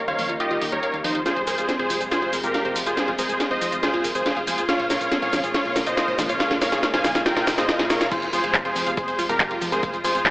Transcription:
Already playing: C#3 G3 A#3 D#4
0.08 D#2 C5 C#5 F5, closed hi-hat
0.19 D#2 F3, open hi-hat
0.29 D#2 F4, closed hi-hat
0.40 F4 G4 D#5, closed hi-hat
0.51 D#2 F4, closed hi-hat
0.62 D#2 A#4, open hi-hat
0.72 D#2 G4 A#4 C#5, closed hi-hat
0.83 F5, closed hi-hat
0.94 D#2 F5, closed hi-hat
1.04 D#2 F3 D#4 C5, open hi-hat
1.15 D#2 F4, closed hi-hat
1.26 C3 G#3 F4 G#4 C5, snare, closed hi-hat, riser, shaker
1.36 F1 C5, closed hi-hat
1.47 F1 G#4 A#4 C5, open hi-hat, shaker
1.58 F1 F4, closed hi-hat, shaker
1.69 C4, snare, closed hi-hat, shaker
1.79 F1 G#4 C5, closed hi-hat
1.90 F1 F3, open hi-hat, shaker
2.01 F1 G#4, closed hi-hat, shaker
2.11 F4 G#4 C5, snare, closed hi-hat, shaker
2.22 F1 F4, closed hi-hat
2.33 F1 A#4, open hi-hat, shaker
2.44 F1 F4 G4 A#4, closed hi-hat, shaker
2.54 F5, snare, closed hi-hat, shaker
2.65 F1 C5, closed hi-hat
2.76 F1 F3, open hi-hat, shaker
2.86 F1 F4 G#4 C5, closed hi-hat, shaker
2.97 F4, snare, closed hi-hat, shaker
3.08 F1 F4, closed hi-hat
3.19 F1 G#4 A#4 C5, open hi-hat, shaker
3.29 F1 G#4, closed hi-hat, shaker
3.40 F5, snare, closed hi-hat, shaker
3.51 F1 C5 D#5, closed hi-hat
3.62 F1 F3, open hi-hat, shaker
3.72 F1 F4, closed hi-hat, shaker
3.83 F4 G#4 C5, snare, closed hi-hat, shaker
3.94 F1 F4, closed hi-hat
4.04 F1 A#4, open hi-hat, shaker
4.15 F1 G#4 C5, closed hi-hat, shaker
4.26 F5, snare, closed hi-hat, shaker
4.37 F1 F5, closed hi-hat
4.47 F1 F3 G#4 C5, open hi-hat, shaker
4.58 F1 F4, closed hi-hat, shaker
4.69 C#3 G#3 A#3 F4 C#5 F5, snare, closed hi-hat, shaker
4.79 A#1 C5, closed hi-hat
4.90 A#1 A#4 C#5 F5, snare, open hi-hat, shaker
5.01 A#1 F4, closed hi-hat, shaker
5.12 C4, snare, closed hi-hat, shaker
5.22 A#1 G#4 C#5 F5, closed hi-hat
5.33 A#1 F3, snare, open hi-hat, shaker
5.44 A#1 G#4, closed hi-hat, shaker
5.54 F4 C#5 F5, snare, closed hi-hat, shaker
5.65 A#1 F4, closed hi-hat
5.76 A#1 A#4, snare, open hi-hat, shaker
5.87 A#1 F4 C5 D#5, closed hi-hat, shaker
5.97 F5, snare, closed hi-hat, shaker
6.08 A#1 C5, closed hi-hat
6.19 A#1 F3, snare, open hi-hat, shaker
6.29 A#1 F4 C#5 F5, closed hi-hat, shaker
6.40 F4, snare, closed hi-hat, shaker
6.51 A#1 F4, snare, closed hi-hat
6.61 A#1 A#4 C#5 F5, snare, open hi-hat, shaker
6.72 A#1 G#4, snare, closed hi-hat, shaker
6.83 F5, snare, closed hi-hat, shaker
6.94 A#1 C5 F5 G#5, snare, closed hi-hat
7.04 A#1 F3, snare, open hi-hat, shaker
7.15 A#1 F4, snare, closed hi-hat, shaker
7.26 F4 A#4 G5, snare, closed hi-hat, swell, shaker
7.37 A#1 F4, snare, closed hi-hat
7.47 A#1 C5, snare, open hi-hat, shaker
7.58 A#1 G#4 C5 D#5, snare, closed hi-hat, shaker
7.69 F4, snare, closed hi-hat, shaker
7.79 A#1 G#4, snare, closed hi-hat
7.90 A#1 F4 A#4 C#5, snare, open hi-hat, shaker
8.01 A#1 F5, snare, closed hi-hat, shaker
8.12 C3 G3 G#3 F4 G#4 C5 C6, kick, closed hi-hat, crash, shaker
8.22 F1 F4, closed hi-hat, shaker
8.33 F1 F4 G#4 C5 C6, open hi-hat, shaker
8.44 F1 F5, closed hi-hat, shaker
8.54 F4, kick, clap, closed hi-hat, shaker
8.65 F1 F4 G#4 C5 C6, closed hi-hat
8.76 F1 F3, open hi-hat, shaker
8.87 F1 F5, closed hi-hat, shaker
8.97 G#4 C5 C6, kick, closed hi-hat, shaker
9.08 F1 C5, closed hi-hat, shaker
9.19 F1 F4, open hi-hat, shaker
9.29 F1 G4 A#4 F5 A#5, closed hi-hat, shaker
9.40 F4, kick, clap, closed hi-hat, shaker
9.51 F1 F4, closed hi-hat
9.62 F1 F3, open hi-hat, shaker
9.72 F1 G#4 A#4 C5 C6, closed hi-hat, shaker
9.83 C#3 F3 F5, kick, closed hi-hat, shaker
9.94 F1 F4, closed hi-hat, shaker
10.04 F1 F4 G#4 C5 C6, open hi-hat, shaker
10.15 F1 F5, closed hi-hat, shaker
10.26 D#4, kick, clap, closed hi-hat, shaker

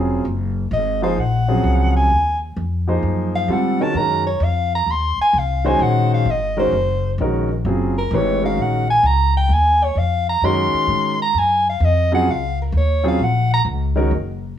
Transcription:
Already playing: F1 C#3 F#3 C4 F4 G#4
0.25 F#1
0.71 G#1 D#5
1.02 F3 A#3 D#4 G#4 C5 F5
1.18 A#1 F#5
1.48 C#3 F3 F#3 C4 G#4
1.64 C#2
1.96 G#5
2.10 D#2
2.56 F2
2.88 F3 A#3 D#4 G#4 C5
3.03 F#2
3.36 F5
3.48 G#2 D3 G3 C4 F4 A4 F#5
3.80 D#3 G#3 C#4 F#4 A#4 A5
3.94 F#2 D#3 G#3 C#4 F#4 A#4 A#5
4.27 C#5
4.40 F2 F5
4.75 A#5
4.86 D#2
4.91 C6
5.18 muted upright bass stroke
5.22 G#5
5.33 C2
5.38 F5
5.64 D#3 G#3 C#4 F#4 C5 G#5
5.79 A#1 F#5
6.14 F5
6.25 G#1
6.30 D#5
6.57 D#3 G#3 C#4 F#4 A#4 C5
6.72 F#1
7.18 A#1 D#3 G#3 C#4 F#4 A#4
7.65 F#1 C#3 F#3 C4 F4 G#4
7.98 A#4
8.11 G#1 E3 A3 D4 G4 B4
8.15 C#5
8.43 D#3 G#3 C#4 F#4 A#4 F5
8.57 A#1
8.62 F#5
8.90 G#5
9.03 C#2 A#5
9.37 G5
9.49 D#2
9.53 G#5
9.84 C#5
9.95 F2 F5
10.29 A#5
10.41 F#2 D#3 G#3 C#4 F#4 A#4 C6
10.73 muted upright bass stroke
10.87 G#2
11.22 A#5
11.34 F#2
11.38 G#5
11.69 F5
11.80 F2
11.85 D#5
12.12 C#3 F#3 C4 F4 G#4 F#5
12.27 C#2 F5
12.62 A#4
12.72 D#2
12.77 C#5
13.04 C#3 F#3 C4 F4 G#4
13.08 F5
13.19 A#1
13.24 F#5
13.54 A#5
13.65 C#2
13.96 D#3 G#3 C#4 F#4 A#4
14.11 F#1

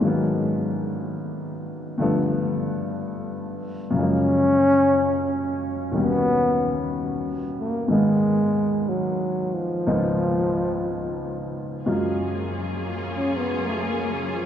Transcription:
Already playing: G#3
0.01 G#2 D#3 F#3
0.05 A#3 B3
1.98 G2 D3 F3 A3
2.02 B3
3.91 F#2 C#3
3.96 F3 G#3 C#4
4.02 A#3
5.91 D#2 B2 D#3 G3 B3
5.97 C#4
7.60 A#3
7.88 G#2 D#3 G#3 A#3
7.93 B3
8.89 F#3
9.55 F3
9.87 C#2 G#2 F3 A#3 B3 D#4
11.84 F#2 F#3 G#3 A#3 C#4 F4 G#4
13.16 C#4
13.38 B3
13.66 A3
13.89 A#3
14.13 C#3
14.35 F3

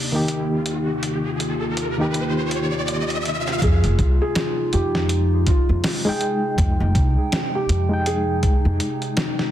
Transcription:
Already playing: D#2 C3 A#3 D#4 G4, riser
0.12 D#3 A#3 D#4 G4
0.28 closed hi-hat
0.65 F4, closed hi-hat
1.03 closed hi-hat
1.40 closed hi-hat
1.77 closed hi-hat
1.97 D#3 A#3 D#4 G4
2.14 closed hi-hat
2.51 closed hi-hat
2.88 closed hi-hat
3.10 closed hi-hat
3.25 closed hi-hat
3.48 snare
3.61 F2 C3 G#3 D#4 F4 G#4, kick, closed hi-hat
3.84 F1, closed hi-hat
3.99 C2, kick, closed hi-hat
4.22 G#4
4.35 snare, closed hi-hat
4.73 F2 G4, closed hi-hat
4.95 snare
5.09 closed hi-hat
5.47 F4, kick, closed hi-hat
5.69 F2
5.84 snare, open hi-hat
6.05 G#3 D#4 G#4 G5
6.21 closed hi-hat
6.58 F2 G5, kick, closed hi-hat
6.80 F1
6.95 C2, kick, closed hi-hat
7.32 snare, closed hi-hat
7.55 G4
7.69 F2, closed hi-hat
7.89 G#3 D#4
7.93 G5
8.06 G#4, closed hi-hat
8.43 kick, closed hi-hat
8.65 F2
8.80 closed hi-hat
9.02 closed hi-hat
9.17 snare, closed hi-hat
9.39 snare

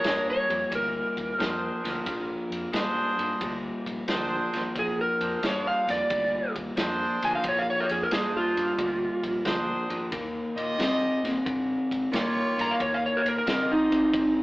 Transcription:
Already playing: D4 G#4 A#4 C#5
0.04 G2 A#2 G3, snare, ride
0.30 C#5
0.49 F2 A#2 G3, ride
0.71 D2 A#2 G3, kick, ride
0.75 A#4
1.17 D#2, kick, ride
1.38 F2 A#2 F3 D4 G#4 C5, snare, ride
1.84 D2 A#2 F3, snare, ride
2.06 A#1 A#2 F3, kick, snare, ride
2.50 F2, ride
2.73 G#2 A#2 G3 D4 G#4 C5, snare, ride
3.18 G2 A#2 G3, ride
3.41 D2 A#2 G3, kick, ride
3.86 A#1, kick, ride
4.08 D2 A#2 F3 D4 G#4 C5, snare, ride
4.53 G#1 A#2 F3, snare, ride
4.75 A#1 A#2 F3 G#4, kick, ride
5.01 A#4
5.20 F2 D4 G#4 C5, ride
5.42 G2 A#2 G3, snare, ride
5.47 C#5
5.67 F5
5.87 F2 A#2 G3 D5, snare, ride
6.10 D2 A#2 G3, kick, ride
6.55 D#2, kick, ride
6.77 F2 A#2 F3 D4 G#4 C5, snare, ride
7.23 D2 A#2 F3 G#5, ride
7.35 F5
7.44 A#1 A#2 F3, kick, ride
7.49 C#5
7.59 F5
7.70 C#5
7.80 A#4
7.89 F2 G#4, ride
8.03 A#4
8.11 G#2 A#2 G3 D4 G#4 C5, snare, ride
8.37 F4
8.56 G2 A#2 G3, ride
8.78 D2 A#2 G3, kick, ride
9.24 A#1, kick, ride
9.45 D2 A#2 F3 D4 G#4 C5, snare, ride
9.90 G#1 A#2 F3, ride
10.12 D#2 D#3 A#3, kick, snare, ride
10.56 A#2 F4 G4 D#5, ride
10.78 C3 D#3 C4, snare, ride
11.23 A#2 D#3 C4, snare, ride
11.45 G2 D#3 C4, kick, ride
11.91 G#2, kick, ride
12.12 A#2 D#3 A#3 F4 G4 C#5, snare, ride
12.57 G2 D#3 A#3, snare, ride
12.61 A#5
12.71 F5
12.79 D#2 D#3 A#3 C#5, kick, ride
12.94 F5
13.06 C#5
13.17 A#4
13.25 A#2 A#4, ride
13.38 A#4
13.46 C#3 D#3 C4 F4 G4 D#5, snare, ride
13.50 A#4
13.72 D#4
13.91 C3 D#3 C4, ride
14.14 G2 D#3 C4, kick, ride

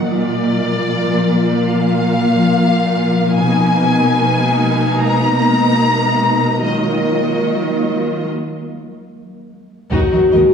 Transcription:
0.05 A#2 F3 A#3 F4 A#4 D5 F5
1.70 F5
3.34 B2 G#3 A#3 D#4 A#4 D#5 G#5
4.99 A#5
6.62 D#3 F#3 A#3 F4 A#4 D#5 F5
9.90 D#2 D#3 F#3 D#4 F#4 A#4, taiko
10.11 D#3 F#4 A#4
10.31 D#2 D#3 G#3 A#4 D#5

